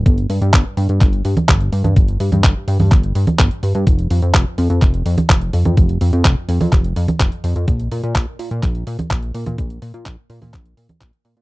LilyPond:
<<
  \new Staff \with { instrumentName = "Analog synth bass" } { \clef bass \time 4/4 \key f \major \tempo 4 = 126 g,,8 g,16 g,16 g,,16 r16 g,16 g,16 g,,8 g,16 r16 g,,8 g,16 g,16 | g,,8 g,16 g,16 g,,16 r16 g,16 g,16 g,,8 g,16 r16 g,,16 r16 g,16 g,16 | f,,8 f,16 f,16 f,,16 r16 f,16 f,16 f,,8 f,16 r16 f,,8 f,16 f,16 | f,,8 f,16 f,16 f,,16 r16 f,16 f,16 f,,8 f,16 r16 f,,16 r16 f,16 f,16 |
bes,,8 bes,16 bes,16 bes,,16 r16 bes,16 bes,16 bes,,8 bes,16 r16 bes,,8 bes,16 bes,16 | bes,,8 bes,16 bes,16 bes,,16 r16 bes,16 bes,16 bes,,8 bes,16 r16 bes,,16 r16 bes,16 bes,16 | }
  \new DrumStaff \with { instrumentName = "Drums" } \drummode { \time 4/4 <hh bd>16 hh16 hho16 hh16 <hc hh bd>8 hho16 hh16 <hc hh bd>16 hh16 hho16 <cgho hh>16 <hc hh bd>16 hh16 hho16 <cgho hh>16 | <hh bd>16 hh16 hho16 <cgho hh>16 <hc hh bd>8 hho16 <cgho hho>16 <hc hh bd>16 hh16 hho16 <cgho hh>16 <hc hh bd>16 hh16 hho16 hh16 | <hh bd>16 hh16 hho16 hh16 <hc hh bd>8 hho16 hh16 <hc hh bd>16 hh16 hho16 <cgho hh>16 <hc hh bd>16 hh16 hho16 <cgho hh>16 | <hh bd>16 hh16 hho16 hh16 <hc hh bd>8 hho16 <cgho hho>16 <hc hh bd>16 hh16 hho16 <cgho hh>16 <hc hh bd>16 hh16 hho16 hh16 |
<hh bd>16 hh16 hho16 hh16 <hc hh bd>8 hho16 hh16 <hc hh bd>16 hh16 hho16 <cgho hh>16 <hc hh bd>16 hh16 hho16 <cgho hh>16 | <hh bd>16 hh16 hho16 hh16 <hc hh bd>8 hho16 <cgho hho>16 <hc hh bd>16 hh16 hho16 <cgho hh>16 <hc hh bd>16 hh16 hho16 hh16 | }
>>